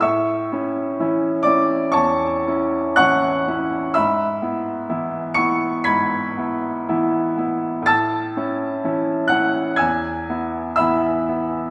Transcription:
\new Staff \with { instrumentName = "Upright piano" } { \time 4/4 \key a \major \tempo 4 = 62 << { <e'' cis''' e'''>4. <d'' d'''>8 <cis'' a'' cis'''>4 <fis'' cis''' fis'''>4 | <e'' b'' e'''>4. <cis''' cis''''>8 <b'' gis''' b'''>2 | <a'' e''' a'''>4. <fis'' fis'''>8 <gis'' e''' gis'''>4 <e'' b'' e'''>8 r8 | } \\ { a,8 <cis' e'>8 <e cis' e'>8 <cis' e'>8 e,8 <cis' e'>8 <e cis' e'>8 <cis' e'>8 | gis,8 <b e'>8 <e b e'>8 <b e'>8 gis,8 <b e'>8 <e b e'>8 <b e'>8 | a,8 <cis' e'>8 <e cis' e'>8 <cis' e'>8 e,8 <b e'>8 <e b e'>8 <b e'>8 | } >> }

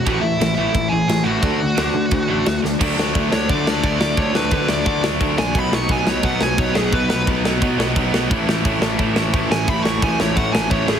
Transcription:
<<
  \new Staff \with { instrumentName = "Lead electric guitar" } { \time 4/4 \key d \lydian \tempo 4 = 175 <fis' fis''>8 <e' e''>4 <e' e''>4 <gis' gis''>4 <fis' fis''>8~ | <fis' fis''>2.~ <fis' fis''>8 r8 | r4. cis''8 d''2 | cis''8 b'8 b'8 d''4 r4 gis''8 |
b''8 cis'''8 gis''8 cis''8 fis''8 gis''8 cis''8 gis'8 | b'8 b'8 r2. | r2. r8 gis''8 | b''8 cis'''8 gis''8 cis''8 fis''8 gis''8 cis''8 gis'8 | }
  \new Staff \with { instrumentName = "Overdriven electric guitar" } { \time 4/4 \key d \lydian <a, e a>8 <a, e>8 <a, e>8 <a, e a>8 <a, e>8 <a, e>8 <a, e>8 <a, e a>8 | <d a d'>8 <d a>8 <d a d'>8 <d a>8 <d a>8 <d a d'>8 <d a>8 <d a>8 | <d fis a d'>8 <d fis a d'>8 <d fis a d'>8 <d fis a d'>8 <d fis a d'>8 <d fis a d'>8 <d fis a d'>8 <d fis a d'>8 | <d fis a d'>8 <d fis a d'>8 <d fis a d'>8 <d fis a d'>8 <d fis a d'>8 <d fis a d'>8 <d fis a d'>8 <d fis a d'>8 |
<b, fis b dis'>8 <b, fis b dis'>8 <b, fis b dis'>8 <b, fis b dis'>8 <b, fis b dis'>8 <b, fis b dis'>8 <b, fis b dis'>8 <b, fis b dis'>8 | <b, fis b dis'>8 <b, fis b dis'>8 <b, fis b dis'>8 <b, fis b dis'>8 <b, fis b dis'>8 <b, fis b dis'>8 <b, fis b dis'>8 <b, fis b dis'>8 | <a, e a cis' e'>8 <a, e a cis' e'>8 <a, e a cis' e'>8 <a, e a cis' e'>8 <a, e a cis' e'>8 <a, e a cis' e'>8 <a, e a cis' e'>8 <a, e a cis' e'>8 | <a, e a cis' e'>8 <a, e a cis' e'>8 <a, e a cis' e'>8 <a, e a cis' e'>8 <a, e a cis' e'>8 <a, e a cis' e'>8 <a, e a cis' e'>8 <a, e a cis' e'>8 | }
  \new Staff \with { instrumentName = "Distorted electric guitar" } { \clef bass \time 4/4 \key d \lydian <a, e a>8 <a, e>8 <a, e>8 <a, e a>8 <a, e>8 <a, e>8 <a, e>8 <a, e a>8 | <d a d'>8 <d a>8 <d a d'>8 <d a>8 <d a>8 <d a d'>8 <d a>8 <d a>8 | <d a d'>8 <d a d'>8 <d a d'>8 <d a d'>8 <d a d'>8 <d a d'>8 <d a d'>8 <d a d'>8 | <d a d'>8 <d a d'>8 <d a d'>8 <d a d'>8 <d a d'>8 <d a d'>8 <d a d'>8 <d a d'>8 |
<b, fis b>8 <b, fis b>8 <b, fis b>8 <b, fis b>8 <b, fis b>8 <b, fis b>8 <b, fis b>8 <b, fis b>8 | <b, fis b>8 <b, fis b>8 <b, fis b>8 <b, fis b>8 <b, fis b>8 <b, fis b>8 <b, fis b>8 <b, fis b>8 | <a, e a>8 <a, e a>8 <a, e a>8 <a, e a>8 <a, e a>8 <a, e a>8 <a, e a>8 <a, e a>8 | <a, e a>8 <a, e a>8 <a, e a>8 <a, e a>8 <a, e a>8 <a, e a>8 <a, e a>8 <a, e a>8 | }
  \new Staff \with { instrumentName = "Picked electric bass" } { \clef bass \time 4/4 \key d \lydian a,,8 a,,8 a,,8 a,,8 a,,8 a,,8 a,,8 a,,8 | d,4 d,8 d8 d,8 a,,8 d,8 d,8 | d,8 d,8 d,8 d,8 d8 d,8 d,8 d,8 | d,8 d,8 d,8 d,8 d8 d,8 d,8 ais,,8 |
b,,8 b,,8 b,,8 b,,8 b,8 b,,8 b,,8 b,,8 | b,,8 b,,8 b,,8 b,,8 b,8 b,,8 b,,8 b,,8 | a,,8 a,,8 a,,8 a,,8 a,8 a,,8 a,,8 a,,8 | a,,8 a,,8 a,,8 a,,8 a,8 a,,8 a,,8 a,,8 | }
  \new DrumStaff \with { instrumentName = "Drums" } \drummode { \time 4/4 <bd cymr>4 <cymr sn>4 <bd cymr>4 <cymr sn>4 | <bd cymr>4 <cymr sn>4 <bd cymr>4 <cymr sn>8 sn8 | <cymc bd>8 sn8 <cymc bd>8 sn8 <cymc bd>8 sn8 <cymc bd>8 sn8 | <cymc bd>8 sn8 <cymc bd>8 sn8 <cymc bd>8 sn8 <cymc bd>8 sn8 |
<cymc bd>8 sn8 <cymc bd>8 sn8 <cymc bd>8 sn8 <cymc bd>8 sn8 | <cymc bd>8 sn8 <cymc bd>8 sn8 <cymc bd>8 sn8 <cymc bd>8 sn8 | <cymc bd>8 sn8 <cymc bd>8 sn8 <cymc bd>8 sn8 <cymc bd>8 sn8 | <cymc bd>8 sn8 <cymc bd>8 sn8 <cymc bd>8 sn8 <cymc bd>8 sn8 | }
>>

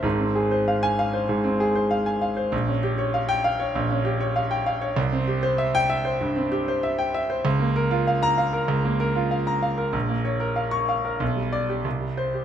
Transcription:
\new Staff \with { instrumentName = "Grand piano" } { \time 4/4 \key f \minor \tempo 4 = 96 << { r4 r16 aes''8 r2 r16 | r4 r16 g''8 r2 r16 | r4 r16 g''8 r2 r16 | r4 r16 bes''8 r2 r16 |
r4 r16 des'''8 r8. d''8 r8 c''8 | } \\ { <aes,, aes,>16 c'16 aes'16 c''16 f''8 f''16 c''16 aes,16 c'16 aes'16 c''16 f''16 aes''16 f''16 c''16 | bes,,16 des'16 g'16 des''16 f''8 f''16 des''16 bes,,16 des'16 g'16 des''16 f''16 g''16 f''16 des''16 | c,16 c'16 g'16 c''16 e''8 e''16 c''16 g,16 c'16 g'16 c''16 e''16 g''16 e''16 c''16 | des,16 bes16 bes'16 f'16 f''8 f''16 bes'16 des,16 bes16 bes'16 f'16 f''16 bes''16 f''16 bes'16 |
bes,,16 bes16 des''16 bes'16 f''8 f''16 bes'16 b,,16 g8 g'16 c,16 g8 g'16 | } >> }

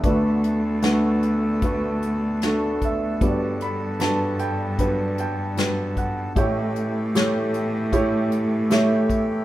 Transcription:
<<
  \new Staff \with { instrumentName = "Felt piano" } { \time 4/4 \key d \major \tempo 4 = 76 << { d''4 fis''4. r4 e''8 | d''8 b''8 a''8 g''4 g''4 fis''8 | g''2 r4 e''4 | } \\ { <a d' fis' b'>4 <a d' fis' b'>4 <a d' fis' b'>4 <a d' fis' a'>4 | <g d' fis' b'>4 <g d' fis' b'>4 <fis g d' b'>4 <fis g d' b'>4 | <a e' g' cis''>4 <a e' g' cis''>4 <a e' g' cis''>4 <a e' g' cis''>4 | } >> }
  \new Staff \with { instrumentName = "Felt piano" } { \clef bass \time 4/4 \key d \major <d, d>1 | <g,, g,>1 | <a,, a,>1 | }
  \new Staff \with { instrumentName = "Harmonium" } { \time 4/4 \key d \major <b a'>1~ | <b a'>1 | g'1 | }
  \new Staff \with { instrumentName = "Harmonium" } { \clef bass \time 4/4 \key d \major <d a>1 | d1 | <e a>1 | }
  \new Staff \with { instrumentName = "Cello" } { \clef bass \time 4/4 \key d \major d,1 | g,1 | a,1 | }
  \new DrumStaff \with { instrumentName = "Drums" } \drummode { \time 4/4 <hh bd>8 hh8 <hh sn>8 hh8 <hh bd>8 hh8 <hh sn>8 <hh bd>8 | <hh bd>8 hh8 <hh sn>8 hh8 <hh bd>8 hh8 <hh sn>8 <hh bd>8 | <hh bd>8 hh8 <hh sn>8 hh8 <hh bd>8 hh8 <hh sn>8 <hh bd>8 | }
>>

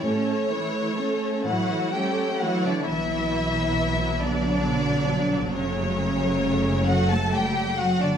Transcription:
<<
  \new Staff \with { instrumentName = "Violin section" } { \time 6/8 \key b \minor \tempo 4. = 45 cis''4. fis''8 g''8 fis''16 d''16 | e''4. d''4. | cis''4. fis''16 a''16 g''8 fis''16 d''16 | }
  \new Staff \with { instrumentName = "Violin section" } { \time 6/8 \key b \minor << { <cis' a'>8 <e' cis''>8 <cis' a'>8 <e' cis''>8 <cis' a'>8 <e' cis''>8 | r2. | r2. | } \\ { r4. fis'8 g'8 fis'16 d'16 | e'4. d'4. | cis'4. fis'16 a'16 g'8 fis'16 d'16 | } >> }
  \new Staff \with { instrumentName = "Viola section" } { \time 6/8 \key b \minor << { cis'8 a8 cis'8 a8 cis'8 a8 | b2. | a2. | } \\ { a8 e8 a8 e8 a8 e8 | fis2.~ | fis2. | } >> }
  \new Staff \with { instrumentName = "Cello section" } { \clef bass \time 6/8 \key b \minor << { r4. fis8 g8 fis16 d16 | e4. d4. | cis4. fis16 a16 g8 fis16 d16 | } \\ { a,4. a,4. | r2. | r2. | } >> }
  \new Staff \with { instrumentName = "Double bass section" } { \clef bass \time 6/8 \key b \minor r2. | b,,2. | fis,,2. | }
>>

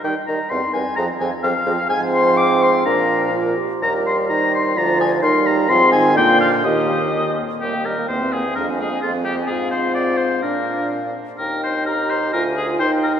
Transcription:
<<
  \new Staff \with { instrumentName = "Oboe" } { \time 2/4 \key ees \major \tempo 4 = 127 g''8 bes''8 c'''8 aes''8 | bes''8 aes''8 f''4 | aes''8 c'''8 d'''8 c'''8 | bes''4 r4 |
bes''8 c'''8 bes''8 c'''8 | bes''8 aes''8 c'''8 bes''8 | c'''8 aes''8 g''8 f''8 | ees''4. r8 |
g'8 bes'8 c''8 aes'8 | bes'8 aes'8 f'8 g'8 | aes'8 c''8 d''8 c''8 | bes'4 r4 |
bes'8 c''8 bes'8 c''8 | bes'8 aes'8 c''8 bes'8 | }
  \new Staff \with { instrumentName = "Flute" } { \time 2/4 \key ees \major bes'8 bes'8 bes'8 bes'8 | aes'8 aes'8 aes'8 aes'8 | c''2 | bes'4. r8 |
bes'4 c''4 | d''4 bes'4 | f'4 f'4 | g'4. r8 |
ees''16 g''16 ees''16 g''16 g''16 e''16 g''16 e''16 | f''16 aes''16 f''16 aes''16 f''16 aes''16 f''16 aes''16 | f''2 | f''4. r8 |
g''4 bes''4 | aes''4 g''4 | }
  \new Staff \with { instrumentName = "Clarinet" } { \time 2/4 \key ees \major ees'8 ees'8 c'8 c'8 | c'8 c'8 c'8 c'8 | c'2 | d'4 f'8 g'8 |
g'4 ees'4 | f'4 ees'4 | c'4 bes4 | bes4. r8 |
bes4 c'4 | d'4 c'4 | f'2 | d'4. r8 |
r4 g'4 | f'4 ees'4 | }
  \new Staff \with { instrumentName = "French horn" } { \clef bass \time 2/4 \key ees \major g8 g8 g8 g8 | f8 f8 f8 f8 | f2 | f4. r8 |
g2 | f4 g4 | f8 ees8 d4 | ees4. r8 |
g16 bes16 g16 bes16 bes16 c'16 bes16 c'16 | aes16 c'16 aes16 c'16 aes16 c'16 aes16 c'16 | c'2 | d'4. r8 |
ees'2 | f'4 ees'4 | }
  \new Staff \with { instrumentName = "Bassoon" } { \clef bass \time 2/4 \key ees \major ees8 ees8 e,8 e,8 | f,8 f,8 f,8 f,8 | aes,2 | bes,4. r8 |
ees,4 ees4 | d,4 ees,4 | aes,4 bes,4 | ees,4. r8 |
ees,4 e,4 | f,4 f,4 | aes,2 | bes,4. r8 |
ees,2 | d,4 ees,4 | }
>>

